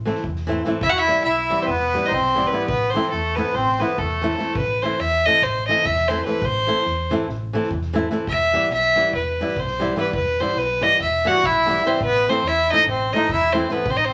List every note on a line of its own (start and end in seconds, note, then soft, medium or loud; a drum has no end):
0.05 0.21 E3 medium
0.05 0.21 A3 medium
0.05 0.22 C4 medium
0.05 0.22 E4 medium
0.05 snare soft
0.15 snare soft
0.24 0.60 E2 medium
0.24 kick medium
0.35 snare soft
0.46 0.61 E3 medium
0.46 0.62 A3 medium
0.46 0.62 C4 medium
0.46 0.62 E4 medium
0.46 snare soft
0.63 0.80 E3 medium
0.63 0.80 A3 medium
0.63 0.80 C4 medium
0.63 snare soft
0.68 0.81 E4 medium
0.81 1.08 E1 medium
0.81 0.91 E4 medium
0.81 0.91 E5 loud
0.81 kick loud
0.90 1.00 F#4 medium
0.90 1.00 F#5 loud
0.98 1.23 E4 medium
0.98 1.24 E5 loud
1.07 1.22 E3 medium
1.07 1.22 G3 medium
1.07 1.23 B3 medium
1.07 1.24 E4 medium
1.07 snare soft
1.24 1.52 B1 medium
1.24 1.60 E4 medium
1.24 1.64 E5 medium
1.24 snare soft
1.50 1.65 E3 medium
1.50 1.66 G3 soft
1.50 1.66 B3 medium
1.50 1.66 E4 medium
1.50 snare soft
1.63 1.70 C4 medium
1.63 1.68 C5 medium
1.67 1.95 E1 medium
1.67 2.06 B3 medium
1.67 2.07 B4 medium
1.67 kick medium
1.67 snare soft
1.92 2.09 E3 medium
1.92 2.09 G3 medium
1.92 2.09 B3 medium
1.92 2.10 E4 medium
1.92 snare soft
2.02 2.10 D#5 medium
2.02 snare soft
2.08 2.46 B1 loud
2.08 2.13 D#4 medium
2.08 2.49 C5 medium
2.08 kick medium
2.12 2.52 C4 medium
2.22 snare soft
2.33 2.49 E3 medium
2.33 2.50 G3 medium
2.33 2.49 B3 medium
2.33 snare soft
2.37 2.50 E4 medium
2.47 2.67 B3 medium
2.47 2.66 B4 medium
2.47 snare soft
2.52 2.67 E3 medium
2.52 2.67 G3 medium
2.52 2.67 B3 soft
2.52 2.67 E4 medium
2.67 2.95 A1 medium
2.67 2.92 B3 medium
2.67 2.92 B4 medium
2.67 kick loud
2.82 snare soft
2.90 3.09 E3 medium
2.90 3.12 C4 medium
2.90 3.10 C5 medium
2.90 snare soft
2.95 3.10 A3 soft
2.95 3.10 C4 medium
2.95 3.10 E4 medium
3.02 snare soft
3.11 3.39 E2 medium
3.11 3.36 A3 medium
3.11 3.37 A4 medium
3.11 snare soft
3.23 snare soft
3.35 3.52 E3 soft
3.35 3.53 A3 soft
3.35 3.55 B3 medium
3.35 3.53 C4 medium
3.35 3.53 E4 medium
3.35 3.56 B4 medium
3.35 snare soft
3.54 3.82 A1 loud
3.54 3.81 C4 medium
3.54 3.82 C5 medium
3.54 kick medium
3.54 snare soft
3.79 3.95 E3 medium
3.79 3.96 A3 medium
3.79 3.99 B3 medium
3.79 3.96 C4 medium
3.79 3.96 E4 medium
3.79 4.00 B4 medium
3.79 snare soft
3.98 4.33 E2 medium
3.98 4.57 A3 medium
3.98 4.56 A4 medium
3.98 kick medium
4.09 snare soft
4.21 4.36 E3 medium
4.21 4.36 A3 medium
4.21 4.36 C4 medium
4.21 4.37 E4 medium
4.21 snare soft
4.29 snare soft
4.38 4.53 E3 soft
4.38 4.53 A3 medium
4.38 4.54 C4 soft
4.38 4.54 E4 medium
4.38 snare soft
4.47 snare soft
4.55 4.83 A1 medium
4.55 4.84 B4 medium
4.55 kick loud
4.81 4.97 E3 medium
4.81 4.98 A3 medium
4.81 4.98 C4 soft
4.81 5.01 C5 medium
4.81 snare soft
4.85 4.98 E4 medium
4.99 5.26 E2 medium
4.99 5.27 E5 medium
4.99 snare soft
5.26 5.40 E3 medium
5.26 5.41 A3 soft
5.26 5.41 C4 medium
5.26 5.41 E4 medium
5.26 5.45 D#5 loud
5.42 5.68 A1 medium
5.42 5.67 C5 medium
5.42 kick medium
5.42 snare soft
5.68 5.83 E3 medium
5.68 5.83 A3 medium
5.68 5.83 C4 medium
5.68 5.84 E4 medium
5.68 5.87 D#5 medium
5.68 snare soft
5.76 snare soft
5.85 6.19 E2 loud
5.85 6.10 E5 medium
5.85 kick medium
5.97 snare soft
6.08 6.22 E3 medium
6.08 6.23 A3 soft
6.08 6.23 C4 medium
6.08 6.24 E4 medium
6.08 6.25 C5 medium
6.08 snare soft
6.25 6.40 E3 medium
6.25 6.41 A3 soft
6.25 6.40 C4 medium
6.25 6.41 E4 medium
6.25 6.47 B4 medium
6.25 snare soft
6.42 6.69 A1 medium
6.42 7.12 C5 loud
6.42 kick loud
6.67 6.82 E3 medium
6.67 6.82 A3 medium
6.67 6.83 C4 medium
6.67 6.83 E4 medium
6.67 snare soft
6.85 7.12 E2 loud
6.85 snare soft
7.10 7.25 E3 medium
7.10 7.26 A3 medium
7.10 7.26 C4 medium
7.10 7.27 E4 medium
7.10 snare soft
7.28 7.55 A1 medium
7.28 kick medium
7.28 snare soft
7.53 7.68 E3 medium
7.53 7.69 A3 medium
7.53 7.69 C4 medium
7.53 7.69 E4 medium
7.53 snare soft
7.63 snare soft
7.71 8.05 E2 loud
7.71 kick medium
7.81 snare soft
7.91 8.08 E3 medium
7.91 8.08 A3 medium
7.91 8.08 C4 medium
7.91 snare soft
7.95 8.09 E4 medium
8.10 8.25 E3 medium
8.10 8.25 A3 medium
8.10 8.26 C4 medium
8.10 8.26 E4 medium
8.10 snare soft
8.27 8.54 E1 medium
8.27 8.69 E5 loud
8.27 kick loud
8.53 8.68 E3 medium
8.53 8.68 G3 medium
8.53 8.68 B3 medium
8.53 8.69 E4 medium
8.53 snare soft
8.71 8.97 B1 medium
8.71 9.13 E5 loud
8.71 snare soft
8.95 9.11 E3 medium
8.95 9.11 G3 soft
8.95 9.11 B3 medium
8.95 9.11 E4 medium
8.95 snare soft
9.13 9.41 E1 loud
9.13 9.61 B4 medium
9.13 kick medium
9.13 snare soft
9.39 9.55 E3 medium
9.39 9.55 G3 medium
9.39 9.55 B3 medium
9.39 9.55 E4 medium
9.39 snare soft
9.48 snare soft
9.56 9.92 B1 loud
9.56 9.98 C5 medium
9.56 kick medium
9.67 snare soft
9.79 9.93 E3 medium
9.79 9.94 G3 medium
9.79 9.94 B3 medium
9.79 9.94 E4 medium
9.79 snare soft
9.96 10.11 E3 medium
9.96 10.11 G3 soft
9.96 10.11 B3 medium
9.96 10.12 E4 medium
9.96 10.15 B4 medium
9.96 snare soft
10.13 10.40 E1 medium
10.13 10.42 B4 medium
10.13 kick medium
10.38 10.54 E3 medium
10.38 10.55 G3 medium
10.38 10.55 B3 medium
10.38 10.60 C5 medium
10.38 snare soft
10.42 10.55 E4 medium
10.48 snare soft
10.56 10.82 B1 medium
10.56 10.84 B4 medium
10.56 snare soft
10.70 snare soft
10.81 10.96 E3 medium
10.81 10.97 G3 soft
10.81 10.97 B3 medium
10.81 10.97 E4 medium
10.81 11.01 D#5 loud
10.81 snare soft
11.00 11.26 E1 loud
11.00 11.29 E5 medium
11.00 kick medium
11.00 snare soft
11.25 11.40 E3 medium
11.25 11.40 G3 medium
11.25 11.40 B3 medium
11.25 11.41 E4 medium
11.25 11.45 F#4 loud
11.25 11.47 F#5 medium
11.25 snare soft
11.36 snare soft
11.43 11.77 B1 medium
11.43 11.83 E4 medium
11.43 11.88 E5 medium
11.43 kick medium
11.66 11.79 E3 medium
11.66 11.80 G3 medium
11.66 11.80 B3 medium
11.66 11.81 E4 medium
11.66 snare soft
11.75 snare soft
11.85 11.98 E3 soft
11.85 11.98 G3 soft
11.85 11.98 B3 soft
11.85 12.02 C4 medium
11.85 11.99 E4 medium
11.85 12.02 C5 medium
11.85 snare soft
11.93 snare soft
12.00 12.26 A1 medium
12.00 kick medium
12.04 12.25 B3 medium
12.04 12.31 B4 loud
12.28 12.41 E3 medium
12.28 12.42 A3 medium
12.28 12.45 C4 medium
12.28 12.42 C4 medium
12.28 12.42 E4 medium
12.28 12.49 C5 medium
12.43 12.69 E2 medium
12.43 12.69 E4 medium
12.43 snare soft
12.48 12.70 E5 loud
12.69 12.84 E3 medium
12.69 12.86 D#4 medium
12.69 12.87 D#5 medium
12.69 snare soft
12.73 12.85 A3 medium
12.73 12.85 C4 soft
12.73 12.85 E4 medium
12.86 13.12 A1 medium
12.86 13.10 C4 medium
12.86 kick medium
12.86 snare soft
12.91 13.15 C5 medium
13.11 13.27 E3 medium
13.11 13.27 A3 medium
13.11 13.31 D#4 medium
13.11 13.30 D#5 medium
13.11 snare soft
13.16 13.28 C4 medium
13.16 13.28 E4 medium
13.21 snare soft
13.28 13.63 E2 medium
13.28 kick loud
13.32 13.51 E4 medium
13.32 13.54 E5 loud
13.41 snare soft
13.51 13.66 E3 medium
13.51 13.66 A3 medium
13.51 13.70 C4 medium
13.51 13.67 C4 medium
13.51 13.67 E4 medium
13.51 13.73 C5 medium
13.51 snare soft
13.68 13.83 E3 medium
13.68 13.84 A3 soft
13.68 13.87 B3 medium
13.68 13.84 C4 medium
13.68 13.84 E4 medium
13.68 13.92 B4 medium
13.68 snare soft
13.85 14.11 A1 medium
13.85 kick loud
13.89 13.96 C4 medium
13.89 13.98 C5 medium
13.97 14.05 D#4 medium
13.97 14.07 D#5 medium
14.05 14.13 C4 medium
14.05 14.13 C5 medium
14.10 snare soft